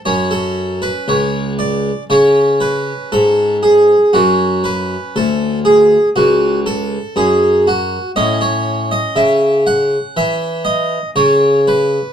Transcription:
<<
  \new Staff \with { instrumentName = "Harpsichord" } { \time 4/4 \key fis \minor \tempo 4 = 59 << { cis''16 a'8 b'16 cis''8 d''8 cis''8 b'8 a'8 gis'8 | fis'8 b'8 a'8 gis'8 fis'8 a'8 gis'8 fis'8 | \key a \lydian dis''16 cis''8 dis''16 e''8 fis''8 e''8 dis''8 cis''8 b'8 | } \\ { cis'2 cis'2 | cis'1 | cis'1 | } >> }
  \new Staff \with { instrumentName = "Harpsichord" } { \clef bass \time 4/4 \key fis \minor fis,4 cis,4 cis4 gis,4 | fis,4 d,4 cis,4 fis,4 | \key a \lydian a,4 cis4 e4 cis4 | }
>>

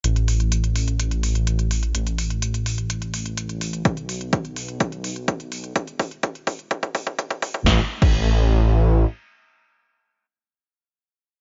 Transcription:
<<
  \new Staff \with { instrumentName = "Detuned saw bass" } { \clef bass \time 4/4 \key e \mixolydian \tempo 4 = 126 a,,1 | a,,1 | b,,1 | e,,1 |
a,,16 r8 a,,2~ a,,16 r4 | r1 | }
  \new DrumStaff \with { instrumentName = "Drums" } \drummode { \time 4/4 hh16 hh16 hho16 hh16 hh16 hh16 hho16 hh16 hh16 hh16 hho16 hh16 hh16 hh16 hho16 hh16 | hh16 hh16 hho16 hh16 hh16 hh16 hho16 hh16 hh16 hh16 hho16 hh16 hh16 hh16 hho16 hh16 | <hh bd>16 hh16 hho16 hh16 <hh bd>16 hh16 hho16 hh16 <hh bd>16 hh16 hho16 hh16 <hh bd>16 hh16 hho16 hh16 | <hh bd>16 hh16 <hho bd>16 hh16 <hh bd>16 hh16 <hho bd>16 hh16 <hh bd>16 <hh bd>16 <hho bd>16 <hh bd>16 <hh bd>16 <hh bd>16 <hho bd>16 <hh bd>16 |
<bd sn>8. <cymc bd>16 r4 r4 r4 | r4 r4 r4 r4 | }
>>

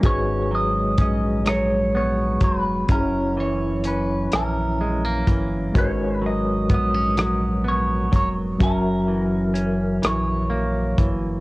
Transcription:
<<
  \new Staff \with { instrumentName = "Clean electric guitar" } { \time 6/8 \key gis \minor \tempo 4. = 42 cis''8 dis''8 dis''8 cis''8 cis''8 b'8 | ais'8 cis''8 b'8 ais'4 r8 | cis''8 dis''8 dis''4 cis''8 cis''8 | ais'4. cis''4 r8 | }
  \new Staff \with { instrumentName = "Tine electric piano" } { \time 6/8 \key gis \minor <gis fis' gis' b' cis''>2. | <fis cis' e' gis' cis''>2. | <gis fis' ais' b' cis''>2. | <fis fis' ais' e''>2. | }
  \new Staff \with { instrumentName = "Clean electric guitar" } { \clef bass \time 6/8 \key gis \minor <gis, cis'>8 fis8 cis'8 fis8 b8 fis8 | <fis, cis'>8 e8 cis'8 e8 gis16 ais16 e8 | <gis, cis'>8 fis8 b16 cis'16 fis8 b8 fis8 | <fis, cis'>8 e8 cis'8 e8 ais8 e8 | }
  \new Staff \with { instrumentName = "Analog synth bass" } { \clef bass \time 6/8 \key gis \minor gis,,4 ais,,4. eis,,8 | fis,,4. ais,,4 g,,8 | gis,,4 ais,,4. eis,,8 | fis,,4. ais,,4 g,,8 | }
  \new DrumStaff \with { instrumentName = "Drums" } \drummode { \time 6/8 <hh bd>4 <hh bd>8 <hh ss>4 <hh bd>8 | <hh bd>4 hh8 <hh ss>4 <hh bd>8 | <hh bd>4 <hh bd>8 <hh ss>4 <hh bd>8 | <hh bd>4 hh8 <hh ss>4 <hh bd>8 | }
>>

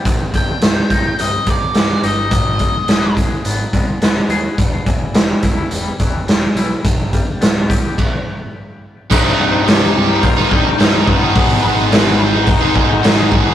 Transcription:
<<
  \new Staff \with { instrumentName = "Lead electric guitar" } { \time 4/4 \key c \minor \tempo 4 = 106 r8 g''4. ees''8 d''4 ees''8~ | ees''4. r2 r8 | r1 | r1 |
<ees' ees''>4 <g' g''>4 <f' f''>8 <ees' ees''>4 <b b'>8~ | <b b'>8 <ces' ces''>4 <ees' ees''>2 r8 | }
  \new Staff \with { instrumentName = "Distorted electric guitar" } { \clef bass \time 4/4 \key c \minor r1 | r1 | r1 | r1 |
<c, g, c g ees'>8 <g, c g ees'>8 <c, g, c g ees'>16 <c g ees'>8 <c g ees'>8 <c g ees'>16 <g, c g ees'>16 <c g ees'>16 <c, g, c g ees'>16 <c g ees'>16 <g, c g ees'>8 | <aes, ees aes ces' ees' aes'>8 <aes ces' ees' aes'>8 <aes, ees aes ces' ees' aes'>16 <aes ces' ees' aes'>8 <aes ces' ees' aes'>8 <aes ces' ees' aes'>16 <aes ces' ees' aes'>16 <aes ces' ees' aes'>16 <aes, ees aes ces' ees' aes'>16 <aes ces' ees' aes'>16 <aes ces' ees' aes'>8 | }
  \new Staff \with { instrumentName = "Distorted electric guitar" } { \clef bass \time 4/4 \key c \minor r1 | r1 | r1 | r1 |
<c, g, c g ees'>4 <c, g, c g ees'>8 <g, c g ees'>8. <c g ees'>16 <g, c g ees'>8 <c, g, c g ees'>8 <g, c g ees'>16 <c g ees'>16 | <aes, ees aes ces' ees' aes'>4 <aes, ees aes ces' ees' aes'>8 <aes ces' ees' aes'>8. <aes ces' ees' aes'>16 <aes ces' ees' aes'>8 <aes, ees aes ces' ees' aes'>8 <aes ces' ees' aes'>16 <aes ces' ees' aes'>16 | }
  \new Staff \with { instrumentName = "Clean electric guitar" } { \clef bass \time 4/4 \key c \minor c,8 g,8 c8 ees'8 c8 g,8 c8 ees'8 | aes,8 aes8 ces'8 aes'8 ces'8 aes8 ces'8 aes'8 | e,8 e8 g8 e'8 g8 e8 g8 e'8 | g,8 g8 b8 g'8 r2 |
r1 | r1 | }
  \new Staff \with { instrumentName = "Picked electric bass" } { \clef bass \time 4/4 \key c \minor c,,8 c,,8 c,,8 c,,8 c,,8 c,,8 c,,8 g,,8 | aes,,4 ees,,4 aes,,8 c,8 ees,,8 ees,8 | e,,8 e,,8 e,,8 e,,8 e,,8 e,,8 e,,8 b,,8 | g,,4 d,,4 r2 |
c,,8 c,,8 c,,8 c,,8 c,,8 ees,,8 c,,8 g,,8 | aes,,8 aes,,8 aes,,8 aes,,8 f,,8 aes,,8 aes,,8 aes,,8 | }
  \new DrumStaff \with { instrumentName = "Drums" } \drummode { \time 4/4 <hh bd>8 <hh bd>8 <hh sn>8 <hh bd>8 hh8 <hh bd>8 <hh sn>8 hh8 | <hh bd>8 <hh bd>8 <hh sn>8 <hh bd>8 hh8 <hh bd>8 <hh sn>8 hh8 | <hh bd>8 <hh bd>8 <hh sn>8 <hh bd>8 hh8 <hh bd>8 <hh sn>8 hh8 | <hh bd>8 <hh bd>8 <hh sn>8 <hh bd>8 <cymc bd>4 r4 |
<cymc bd>4 <hho sn>4 <hho bd>8 bd8 <hho sn>8 bd8 | <hho bd>4 <hho sn>4 <hho bd>8 bd8 <hho sn>8 bd8 | }
>>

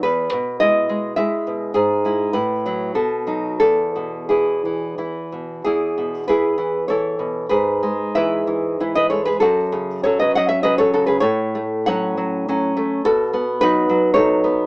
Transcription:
\new Staff \with { instrumentName = "Nylon-string guitar" } { \time 3/4 \key e \major \tempo 4 = 99 << { b'4 dis''4 e''4 | gis'4 b'4 a'4 | a'4 gis'4. r8 | <e' gis'>4 <gis' b'>4 <a' cis''>4 |
<gis' b'>4 <b' e''>4~ <b' e''>16 <b' dis''>16 <a' cis''>16 <gis' b'>16 | <fis' a'>4 <a' cis''>16 <b' dis''>16 <dis'' fis''>16 <cis'' e''>16 <b' dis''>16 <a' cis''>16 <fis' a'>16 <gis' b'>16 | <a' cis''>4 <cis'' fis''>4. r8 | <fis' a'>4 <fis' b'>4 <a' cis''>4 | } \\ { e,8 b,8 <gis e'>8 gis8 <gis e'>8 b,8 | gis,8 <gis e'>8 a,8 <fis e'>8 b,8 <fis dis'>8 | e,8 b,8 <e e'>8 e8 <e e'>8 b,8 | e,8 b,8 <e e'>8 e8 <e e'>8 b,8 |
gis,8 gis8 <e e'>8 e8 <e e'>8 gis8 | fis,8 cis8 <fis cis'>8 fis8 <fis cis'>8 cis8 | a,8 a8 <fis cis'>8 fis8 <fis cis'>8 a8 | b,8 b8 <fis dis'>8 fis8 <fis dis'>8 b8 | } >> }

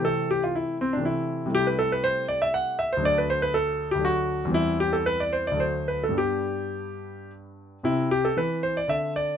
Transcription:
<<
  \new Staff \with { instrumentName = "Grand piano" } { \time 3/4 \key a \minor \tempo 4 = 117 a'8 g'16 f'16 e'8 c'16 d'16 e'4 | \key g \major g'16 b'16 a'16 b'16 c''8 d''16 e''16 fis''8 e''16 c''16 | d''16 b'16 c''16 b'16 a'8. g'16 fis'4 | e'8 g'16 a'16 b'16 d''16 c''16 d''16 c''8 b'16 a'16 |
g'2 r4 | \key c \major e'8 g'16 a'16 b'8 c''16 d''16 e''8 d''8 | }
  \new Staff \with { instrumentName = "Grand piano" } { \clef bass \time 3/4 \key a \minor << { <c e a c'>2 <c e a c'>4 | \key g \major <c g a e'>2. | <d, fis a d'>2 <d, fis a d'>4 | <e, e g c'>2 <d, fis a d'>4 |
<g, g b d'>2. | \key c \major c'2. | } \\ { r2. | r2. | r2. | r2. |
r2. | c4 e4 d4 | } >> }
>>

